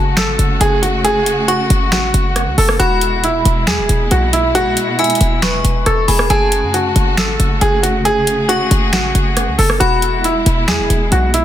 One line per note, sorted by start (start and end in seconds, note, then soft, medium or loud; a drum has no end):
0.00 0.18 F#1 loud
0.00 2.76 C#3 medium
0.00 2.76 A3 medium
0.00 0.14 F#4 medium
0.00 2.76 F#4 medium
0.00 0.13 A5 loud
0.17 0.38 G#1 loud
0.17 0.58 A4 medium
0.17 finger snap loud
0.17 snare loud
0.17 closed hi-hat medium
0.39 0.60 F#1 loud
0.39 closed hi-hat medium
0.61 1.66 F#1 loud
0.61 0.78 G#4 loud
0.61 closed hi-hat medium
0.82 1.00 F#4 medium
0.82 closed hi-hat medium
1.04 1.46 G#4 loud
1.04 closed hi-hat medium
1.26 closed hi-hat medium
1.48 1.89 F#4 medium
1.48 2.32 C#6 medium
1.48 closed hi-hat medium
1.70 1.94 F#1 loud
1.70 closed hi-hat medium
1.92 2.13 A1 loud
1.92 2.54 F#4 medium
1.92 finger snap loud
1.92 snare loud
1.92 closed hi-hat medium
2.14 2.48 F#1 loud
2.14 closed hi-hat medium
2.36 cross-stick medium
2.36 closed hi-hat medium
2.47 2.57 C#2 loud
2.58 2.79 F#1 loud
2.58 2.75 A4 medium
2.58 open hi-hat medium
2.69 cross-stick loud
2.79 3.43 E1 loud
2.79 6.27 B2 medium
2.79 6.27 G#3 medium
2.79 6.27 E4 medium
2.79 3.21 F#4 loud
2.79 3.63 B5 loud
2.79 closed hi-hat medium
3.01 closed hi-hat medium
3.24 3.65 E4 medium
3.24 closed hi-hat medium
3.45 3.69 E1 loud
3.45 closed hi-hat medium
3.67 3.80 E2 loud
3.67 4.09 G#4 medium
3.67 finger snap loud
3.67 snare loud
3.67 closed hi-hat medium
3.78 3.89 E1 loud
3.89 4.10 E1 loud
3.89 closed hi-hat medium
4.11 4.57 B1 loud
4.11 4.28 F#4 medium
4.11 closed hi-hat medium
4.33 4.50 E4 medium
4.33 closed hi-hat medium
4.55 4.67 G#1 loud
4.55 4.96 F#4 loud
4.55 closed hi-hat medium
4.66 4.76 B1 loud
4.77 closed hi-hat medium
4.99 5.40 E4 medium
4.99 5.40 G#5 medium
4.99 closed hi-hat soft
5.04 closed hi-hat soft
5.10 closed hi-hat medium
5.15 closed hi-hat medium
5.21 5.63 E1 loud
5.21 closed hi-hat medium
5.42 5.84 B4 medium
5.42 6.04 C#6 medium
5.42 finger snap loud
5.42 snare loud
5.42 closed hi-hat medium
5.64 5.85 E1 loud
5.64 closed hi-hat medium
5.86 6.07 E1 loud
5.86 6.03 A4 medium
5.86 cross-stick medium
5.86 closed hi-hat medium
6.08 6.29 E1 loud
6.08 6.25 G#4 medium
6.08 6.29 B5 medium
6.08 open hi-hat medium
6.19 cross-stick loud
6.30 6.64 F#1 loud
6.30 9.77 C#3 medium
6.30 9.77 A3 medium
6.30 8.04 F#4 medium
6.30 6.71 G#4 loud
6.30 7.14 A5 loud
6.30 closed hi-hat medium
6.52 closed hi-hat medium
6.63 6.94 F#2 loud
6.74 7.15 F#4 medium
6.74 closed hi-hat medium
6.96 7.19 F#1 loud
6.96 closed hi-hat medium
7.17 7.38 G#1 loud
7.17 7.59 A4 medium
7.17 finger snap loud
7.17 snare loud
7.17 closed hi-hat medium
7.40 7.61 F#1 loud
7.40 closed hi-hat medium
7.61 8.67 F#1 loud
7.61 7.78 G#4 loud
7.61 closed hi-hat medium
7.83 8.00 F#4 medium
7.83 closed hi-hat medium
8.05 8.46 G#4 loud
8.05 9.79 G#4 medium
8.05 closed hi-hat medium
8.27 closed hi-hat medium
8.49 8.90 F#4 medium
8.49 9.33 C#6 medium
8.49 closed hi-hat medium
8.71 8.94 F#1 loud
8.71 closed hi-hat medium
8.93 9.14 A1 loud
8.93 9.55 F#4 medium
8.93 finger snap loud
8.93 snare loud
8.93 closed hi-hat medium
9.15 9.49 F#1 loud
9.15 closed hi-hat medium
9.37 cross-stick medium
9.37 closed hi-hat medium
9.48 9.58 C#2 loud
9.58 9.80 F#1 loud
9.58 9.76 A4 medium
9.58 open hi-hat medium
9.70 cross-stick loud
9.80 10.44 E1 loud
9.80 11.45 B2 medium
9.80 11.45 G#3 medium
9.80 11.45 E4 medium
9.80 10.21 F#4 loud
9.80 10.64 B5 loud
9.80 closed hi-hat medium
10.02 closed hi-hat medium
10.24 10.66 E4 medium
10.24 closed hi-hat medium
10.46 10.70 E1 loud
10.46 closed hi-hat medium
10.68 10.80 E2 loud
10.68 11.09 G#4 medium
10.68 finger snap loud
10.68 snare loud
10.68 closed hi-hat medium
10.79 10.89 E1 loud
10.90 11.11 E1 loud
10.90 closed hi-hat medium
11.12 11.45 B1 loud
11.12 11.29 F#4 medium
11.12 closed hi-hat medium
11.34 11.45 E4 medium
11.34 closed hi-hat medium